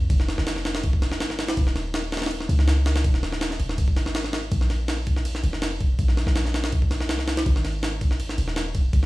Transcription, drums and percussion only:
0.10 kick loud
0.10 ride medium
0.20 snare soft
0.28 snare medium
0.28 ride medium
0.38 snare medium
0.47 snare loud
0.47 ride medium
0.56 snare soft
0.65 snare loud
0.65 ride medium
0.75 snare loud
0.75 ride medium
0.84 kick loud
0.84 ride medium
0.93 kick loud
1.02 snare medium
1.02 ride medium
1.12 snare medium
1.20 snare loud
1.20 ride medium
1.30 snare soft
1.39 snare loud
1.39 ride medium
1.48 snare loud
1.48 ride medium
1.57 kick loud
1.57 ride medium
1.67 snare soft
1.76 snare soft
1.76 ride medium
1.94 snare loud
1.94 ride medium
2.12 snare medium
2.12 ride medium
2.17 snare medium
2.17 ride medium
2.22 snare medium
2.22 ride medium
2.26 snare medium
2.26 ride medium
2.31 ride medium
2.40 snare soft
2.49 ride medium
2.59 snare soft
2.68 snare loud
2.68 ride medium
2.86 snare loud
2.86 ride medium
2.96 snare loud
2.96 ride medium
3.04 kick loud
3.04 ride medium
3.14 snare soft
3.23 snare medium
3.23 ride medium
3.32 snare medium
3.41 snare loud
3.41 ride medium
3.51 snare soft
3.60 ride medium
3.69 snare medium
3.78 kick loud
3.78 ride medium
3.88 kick loud
3.97 snare medium
3.97 ride medium
4.06 snare medium
4.15 snare loud
4.15 ride medium
4.24 snare soft
4.33 snare loud
4.33 ride medium
4.52 kick loud
4.52 ride medium
4.61 snare soft
4.70 snare soft
4.70 ride medium
4.88 snare loud
4.88 ride medium
5.07 kick medium
5.07 ride medium
5.16 snare soft
5.25 ride medium
5.35 snare soft
5.44 ride medium
5.53 snare soft
5.62 snare loud
5.62 ride medium
5.80 kick medium
5.80 ride medium
5.99 kick loud
5.99 ride medium
6.08 snare soft
6.17 snare medium
6.17 ride medium
6.27 snare medium
6.36 snare loud
6.36 ride medium
6.45 snare soft
6.54 snare loud
6.54 ride medium
6.64 snare loud
6.64 ride medium
6.72 kick loud
6.72 ride medium
6.82 kick loud
6.91 snare medium
6.91 ride medium
7.00 snare medium
7.09 snare loud
7.09 ride medium
7.19 snare soft
7.28 snare loud
7.28 ride medium
7.37 snare loud
7.37 ride medium
7.46 kick loud
7.46 ride medium
7.56 snare soft
7.65 snare soft
7.65 ride medium
7.83 snare loud
7.83 ride medium
8.01 kick loud
8.01 ride medium
8.11 snare soft
8.20 ride medium
8.29 snare soft
8.38 ride medium
8.48 snare soft
8.56 snare loud
8.56 ride medium
8.75 kick medium
8.75 ride medium
8.93 kick loud
8.93 ride medium

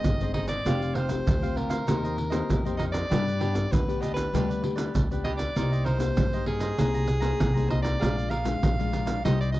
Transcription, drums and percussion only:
0.04 pandeiro medium
0.04 shaker medium
0.04 surdo medium
0.21 pandeiro soft
0.21 shaker soft
0.34 pandeiro medium
0.48 pandeiro medium
0.48 shaker medium
0.48 surdo soft
0.66 pandeiro medium
0.66 shaker medium
0.66 surdo medium
0.82 pandeiro soft
0.82 shaker soft
0.95 pandeiro medium
1.09 pandeiro medium
1.09 shaker medium
1.09 surdo soft
1.27 pandeiro medium
1.27 shaker medium
1.27 surdo medium
1.43 pandeiro soft
1.43 shaker soft
1.57 pandeiro soft
1.57 surdo soft
1.70 pandeiro medium
1.70 shaker medium
1.70 surdo soft
1.88 pandeiro medium
1.88 shaker medium
1.88 surdo medium
2.05 pandeiro soft
2.05 shaker soft
2.18 pandeiro soft
2.32 pandeiro medium
2.32 shaker medium
2.50 pandeiro medium
2.50 shaker medium
2.50 surdo medium
2.66 pandeiro soft
2.66 shaker soft
2.79 pandeiro medium
2.79 surdo soft
2.94 pandeiro medium
2.94 shaker medium
2.94 surdo soft
3.12 pandeiro medium
3.12 shaker medium
3.12 surdo medium
3.28 pandeiro soft
3.28 shaker soft
3.41 pandeiro medium
3.55 pandeiro medium
3.55 shaker medium
3.55 surdo soft
3.73 pandeiro medium
3.73 shaker medium
3.73 surdo loud
3.89 pandeiro soft
3.89 shaker soft
4.03 pandeiro soft
4.03 shaker medium
4.03 surdo soft
4.17 pandeiro medium
4.17 shaker medium
4.17 surdo soft
4.35 pandeiro medium
4.35 shaker medium
4.35 surdo medium
4.51 pandeiro soft
4.51 shaker soft
4.64 pandeiro soft
4.78 pandeiro medium
4.78 shaker medium
4.95 pandeiro medium
4.95 shaker medium
4.95 surdo medium
5.12 pandeiro soft
5.12 shaker soft
5.25 pandeiro medium
5.25 surdo soft
5.39 pandeiro medium
5.39 shaker medium
5.39 surdo soft
5.57 pandeiro medium
5.57 shaker medium
5.57 surdo medium
5.73 pandeiro soft
5.73 shaker soft
5.86 pandeiro medium
6.00 pandeiro medium
6.00 shaker medium
6.00 surdo soft
6.17 pandeiro medium
6.17 shaker medium
6.17 surdo medium
6.33 pandeiro soft
6.33 shaker soft
6.46 pandeiro medium
6.46 surdo soft
6.60 pandeiro medium
6.60 shaker medium
6.60 surdo soft
6.79 pandeiro medium
6.79 shaker medium
6.79 surdo medium
6.95 pandeiro soft
6.95 shaker soft
7.08 pandeiro medium
7.08 shaker medium
7.22 pandeiro medium
7.22 shaker medium
7.40 pandeiro medium
7.40 shaker medium
7.40 surdo medium
7.57 pandeiro soft
7.57 shaker soft
7.70 pandeiro medium
7.85 pandeiro medium
7.85 shaker medium
7.85 surdo soft
8.02 pandeiro medium
8.02 shaker medium
8.02 surdo medium
8.19 pandeiro soft
8.19 shaker soft
8.31 pandeiro medium
8.45 pandeiro medium
8.45 shaker medium
8.45 surdo soft
8.63 pandeiro medium
8.63 shaker medium
8.63 surdo loud
8.80 pandeiro soft
8.80 shaker soft
8.93 pandeiro medium
8.93 shaker medium
8.93 surdo soft
9.07 pandeiro medium
9.07 shaker medium
9.07 surdo soft
9.25 pandeiro medium
9.25 shaker medium
9.25 surdo medium
9.42 pandeiro soft
9.42 shaker soft
9.54 pandeiro soft

